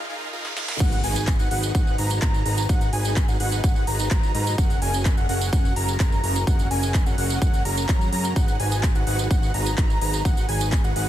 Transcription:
Already playing: reverse cymbal
0.09 D#4 F4 G#4 A#4 F5
0.33 D#4 F4 G#4 A#4 F5
0.45 snare
0.57 D#4 F4 G#4 A#4 F5, snare
0.68 snare
0.80 G#1 D#4 F#4 G#4 B4 F#5, kick, closed hi-hat, crash, tambourine, impact
0.92 closed hi-hat, tambourine
1.04 G#1 D#4 F#4 G#4 B4 G#5, open hi-hat
1.16 closed hi-hat, tambourine
1.27 kick, clap, closed hi-hat, tambourine
1.39 G#1 D#4 F#4 G#4 B4 F#5, closed hi-hat, tambourine
1.51 G#1 D#4 F#4 G#4 B4 F#5, open hi-hat
1.63 closed hi-hat, tambourine
1.75 G#1 D#4 F#4 G#4 B4 F#5, kick, closed hi-hat, tambourine
1.87 tambourine
1.98 G#1 D#4 F#4 G#4 B4 A#5, open hi-hat
2.10 closed hi-hat, tambourine
2.22 G#1 D#4 F#4 G#4 B4 A#5, kick, clap, closed hi-hat, tambourine
2.34 tambourine
2.46 G#1 D#4 F#4 G#4 B4 A#5, open hi-hat
2.57 closed hi-hat, tambourine
2.69 G#1 D#4 F#4 G#4 B4 F#5, kick, closed hi-hat, tambourine
2.81 closed hi-hat, tambourine
2.93 G#1 D#4 F#4 G#4 B4 G#5, open hi-hat
3.05 closed hi-hat, tambourine
3.16 kick, clap, closed hi-hat, tambourine
3.28 G#1 D#4 F#4 G#4 B4 F#5, closed hi-hat, tambourine
3.40 G#1 D#4 F#4 G#4 B4 F#5, open hi-hat
3.52 closed hi-hat, tambourine
3.64 G#1 D#4 F#4 G#4 B4 F#5, kick, closed hi-hat, tambourine
3.76 tambourine
3.87 G#1 D#4 F#4 G#4 B4 A#5, open hi-hat
3.99 closed hi-hat, tambourine
4.11 G#1 D#4 F#4 G#4 B4 A#5, kick, clap, closed hi-hat, tambourine
4.23 tambourine
4.35 G#2 D#4 F#4 G#4 B4 A#5, open hi-hat
4.46 closed hi-hat, tambourine
4.58 F#1 C#4 F#4 G#4 A#4 F#5, kick, closed hi-hat, tambourine
4.70 closed hi-hat, tambourine
4.82 F#1 C#4 F#4 G#4 A#4 G#5, open hi-hat
4.94 closed hi-hat, tambourine
5.05 kick, clap, closed hi-hat, tambourine
5.17 F#1 C#4 F#4 G#4 A#4 F#5, closed hi-hat, tambourine
5.29 F#1 C#4 F#4 G#4 A#4 F#5, open hi-hat
5.41 closed hi-hat, tambourine
5.53 F#1 C#4 F#4 G#4 A#4 F#5, kick, closed hi-hat, tambourine
5.65 tambourine
5.76 F#1 C#4 F#4 G#4 A#4 A#5, open hi-hat
5.88 closed hi-hat, tambourine
6.00 F#1 C#4 F#4 G#4 A#4 A#5, kick, clap, closed hi-hat, tambourine
6.12 tambourine
6.23 F#1 C#4 F#4 G#4 A#4 A#5, open hi-hat
6.35 closed hi-hat, tambourine
6.47 F#1 C#4 F#4 G#4 A#4 F#5, kick, closed hi-hat, tambourine
6.59 closed hi-hat, tambourine
6.71 F#1 C#4 F#4 G#4 A#4 G#5, open hi-hat
6.83 closed hi-hat, tambourine
6.94 kick, clap, closed hi-hat, tambourine
7.06 F#1 C#4 F#4 G#4 A#4 F#5, closed hi-hat, tambourine
7.18 F#1 C#4 F#4 G#4 A#4 F#5, open hi-hat
7.30 tambourine
7.42 F#1 C#4 F#4 G#4 A#4 F#5, kick, closed hi-hat, tambourine
7.54 closed hi-hat, tambourine
7.65 F#1 C#4 F#4 G#4 A#4 A#5, open hi-hat
7.78 tambourine
7.89 F#2 C#4 F#4 G#4 A#4 A#5, kick, clap, closed hi-hat, tambourine
8.01 tambourine
8.12 F#2 C#4 F#4 G#4 A#4 A#5, open hi-hat
8.24 closed hi-hat, tambourine
8.36 G#1 D#4 F#4 G#4 B4 F#5, kick, closed hi-hat, tambourine
8.48 closed hi-hat, tambourine
8.60 G#1 D#4 F#4 G#4 B4 G#5, open hi-hat
8.71 closed hi-hat, tambourine
8.83 kick, clap, closed hi-hat, tambourine
8.95 G#1 D#4 F#4 G#4 B4 F#5, closed hi-hat, tambourine
9.07 G#1 D#4 F#4 G#4 B4 F#5, open hi-hat
9.19 closed hi-hat, tambourine
9.31 G#1 D#4 F#4 G#4 B4 F#5, kick, closed hi-hat, tambourine
9.43 tambourine
9.54 G#1 D#4 F#4 G#4 B4 A#5, open hi-hat
9.66 closed hi-hat, tambourine
9.78 G#1 D#4 F#4 G#4 B4 A#5, kick, clap, closed hi-hat, tambourine
9.90 tambourine
10.01 G#1 D#4 F#4 G#4 B4 A#5, open hi-hat
10.14 tambourine
10.25 G#1 D#4 F#4 G#4 B4 F#5, kick, closed hi-hat, tambourine
10.37 closed hi-hat, tambourine
10.49 G#1 D#4 F#4 G#4 B4 G#5, open hi-hat
10.61 closed hi-hat, tambourine
10.72 kick, clap, closed hi-hat, tambourine
10.84 G#1 D#4 F#4 G#4 B4 F#5, closed hi-hat, tambourine
10.96 G#1 D#4 F#4 G#4 B4 F#5, open hi-hat

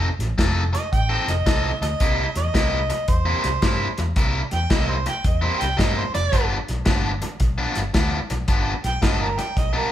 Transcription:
0.19 A1, snare, closed hi-hat
0.38 F1 F3 C4 D#4 A4, kick, snare, closed hi-hat
0.73 D#5, muted overdriven electric guitar stroke, snare, closed hi-hat
0.92 A1 G5, kick, closed hi-hat
1.09 F3 C4 D#4 A4
1.28 F1 D#5, snare, closed hi-hat
1.46 C2 F3 C4 D#4 A4, kick, snare, closed hi-hat
1.81 D2 D#5, muted overdriven electric guitar stroke, snare, closed hi-hat
2.00 C2 C3 G3 A#3 E4, kick, closed hi-hat
2.35 E2 D#5, snare, closed hi-hat
2.54 C2 C3 G3 A#3 E4, kick, snare, closed hi-hat
2.90 muted overdriven electric guitar stroke, snare, closed hi-hat
3.08 E2 C5, kick, closed hi-hat
3.25 C3 G3 A#3 E4
3.44 C2, snare, closed hi-hat
3.62 G2 C3 G3 A#3 E4, kick, snare, closed hi-hat
3.98 E2, muted overdriven electric guitar stroke, snare, closed hi-hat
4.16 C2 C3 G3 A#3 E4, kick, closed hi-hat
4.51 E2 G5, snare, closed hi-hat
4.70 C2 C3 G3 A#3 E4 D#5, kick, snare, closed hi-hat
4.90 C5
5.06 G5, muted overdriven electric guitar stroke, snare, closed hi-hat
5.24 E2 D#5, kick, closed hi-hat
5.42 C3 G3 A#3 E4 C5
5.61 C2 G5, snare, closed hi-hat
5.77 G2 C3 G3 A#3 E4 D#5, kick, snare, closed hi-hat
5.97 C5
6.14 F1 D5, muted overdriven electric guitar stroke, snare, closed hi-hat
6.32 G1 G2 F3 B3 D4, kick, closed hi-hat
6.68 B1, snare, closed hi-hat
6.85 G1 G2 F3 B3 D4, kick, snare, closed hi-hat
7.22 muted overdriven electric guitar stroke, snare, closed hi-hat
7.40 B1, kick, snare, closed hi-hat
7.58 G2 F3 B3 D4
7.75 G1, snare, closed hi-hat
7.94 D2 G2 F3 B3 D4, kick, snare, closed hi-hat
8.30 B1, muted overdriven electric guitar stroke, snare, closed hi-hat
8.48 G1 G2 F3 B3 D4, kick, closed hi-hat
8.84 B1 G5, snare, closed hi-hat
9.02 G1 G2 F3 B3 D4 D#5, kick, snare, closed hi-hat
9.21 A#4
9.38 G5, muted overdriven electric guitar stroke, snare, closed hi-hat
9.57 B1 D#5, kick, snare, closed hi-hat
9.73 G2 F3 B3 D4 A#4

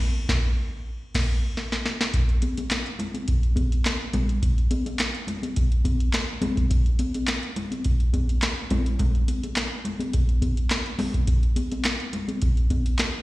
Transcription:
0.29 kick, snare
1.14 kick, snare, crash
1.57 snare
1.72 snare
1.86 snare
2.01 snare
2.14 kick, closed hi-hat
2.29 closed hi-hat
2.42 closed hi-hat, high conga
2.57 closed hi-hat, high conga
2.71 snare, clap, closed hi-hat, muted conga
2.86 closed hi-hat
2.99 closed hi-hat, muted conga, low conga
3.14 closed hi-hat, high conga
3.28 kick, closed hi-hat, muted conga
3.43 closed hi-hat
3.56 kick, closed hi-hat, muted conga, high conga
3.72 closed hi-hat
3.85 snare, clap, closed hi-hat, muted conga
4.13 kick, closed hi-hat, high conga, low conga
4.29 closed hi-hat
4.42 kick, closed hi-hat
4.58 closed hi-hat
4.71 closed hi-hat, muted conga, high conga
4.86 closed hi-hat, high conga
4.99 snare, clap, closed hi-hat, muted conga
5.15 closed hi-hat
5.27 closed hi-hat, muted conga, low conga
5.43 closed hi-hat, high conga
5.56 kick, closed hi-hat, muted conga
5.72 closed hi-hat
5.85 kick, closed hi-hat, muted conga, high conga
6.00 closed hi-hat
6.13 snare, clap, closed hi-hat, muted conga
6.42 closed hi-hat, muted conga, high conga, low conga
6.57 kick, closed hi-hat
6.70 kick, closed hi-hat, muted conga
6.86 closed hi-hat
6.99 closed hi-hat, muted conga, high conga
7.14 closed hi-hat, high conga
7.27 snare, clap, closed hi-hat, muted conga
7.43 closed hi-hat
7.56 closed hi-hat, muted conga, low conga
7.71 closed hi-hat, high conga
7.84 kick, closed hi-hat, muted conga
8.00 closed hi-hat
8.13 kick, closed hi-hat, muted conga, high conga
8.29 closed hi-hat
8.42 snare, clap, closed hi-hat, muted conga
8.70 kick, closed hi-hat, muted conga, high conga, low conga
8.86 closed hi-hat
8.99 kick, closed hi-hat, low conga
9.15 closed hi-hat
9.28 closed hi-hat, muted conga, high conga
9.43 closed hi-hat, high conga
9.56 snare, clap, closed hi-hat, muted conga
9.85 closed hi-hat, low conga
10.00 closed hi-hat, high conga
10.13 kick, closed hi-hat, muted conga
10.29 closed hi-hat
10.42 kick, closed hi-hat, muted conga, high conga
10.57 closed hi-hat
10.70 snare, clap, closed hi-hat
10.86 closed hi-hat
10.99 open hi-hat, muted conga, high conga, low conga
11.14 kick, closed hi-hat
11.27 kick, closed hi-hat, muted conga
11.43 closed hi-hat
11.56 closed hi-hat, muted conga, high conga
11.72 closed hi-hat, high conga
11.84 snare, clap, closed hi-hat
12.00 closed hi-hat
12.13 closed hi-hat, muted conga, low conga
12.28 closed hi-hat, high conga
12.42 kick, closed hi-hat, muted conga
12.57 closed hi-hat
12.70 kick, closed hi-hat, muted conga, high conga
12.86 closed hi-hat
12.99 snare, clap, closed hi-hat, muted conga

